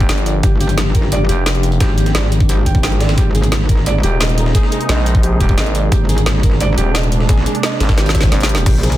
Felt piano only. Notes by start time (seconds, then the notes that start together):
0.09 D5
0.26 D5
0.43 G4
0.61 G4
0.95 A#4
1.12 D5
1.29 G4
1.46 D5
1.80 G4
1.98 G4
2.15 D5
2.49 G4
2.66 G5
2.83 G5
3.01 D5
3.18 G4
3.35 G#4
3.69 A#4
3.86 D5
4.03 G4
4.21 D#5
4.55 G#4
4.72 G#4
4.89 D#5
5.23 G4
5.40 G4
5.58 D#5
5.75 D5
5.92 G4
6.09 G#4
6.43 A#4
6.61 D5
6.78 G4
6.95 D#5
7.29 G#4
7.46 G#4
7.63 D#5
7.98 G4
8.15 G4
8.32 D5
8.49 G4
8.66 G4
8.83 G#4